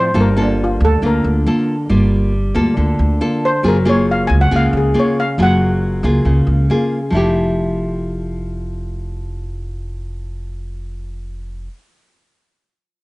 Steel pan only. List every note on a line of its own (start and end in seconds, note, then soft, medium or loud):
0.00 0.17 C5 medium
0.21 0.39 A#4 medium
0.42 0.61 D4 medium
0.64 0.83 F4 medium
0.85 1.04 A4 medium
1.06 2.31 A#4 medium
3.45 3.65 C5 medium
3.68 3.87 A#4 medium
3.89 4.09 C#5 medium
4.11 4.23 F5 medium
4.27 4.39 G#5 medium
4.41 4.53 F#5 medium
4.56 4.75 F5 medium
4.77 4.96 G#4 medium
4.99 5.18 C#5 medium
5.20 5.39 F5 medium
5.43 5.54 F#5 medium